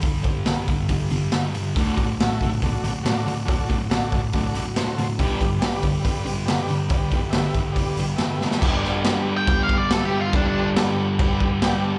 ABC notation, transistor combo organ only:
X:1
M:4/4
L:1/8
Q:1/4=140
K:Glyd
V:1 name="Transistor combo organ"
z8 | [FAd] z [FAe] z [FAd] z [FAd] z | [FAd] z [FAd] z [FAd] z [FA=c] z | [GBd] z [GBd] z [GBd] z [GBd] z |
[GBd] z [GBe] z [GBd] z [GBe] z | [GBd] z [GBd] z [GBd] z [GBe] z | [GBd] z [GBd] z [GBd] z [GBdg] a |]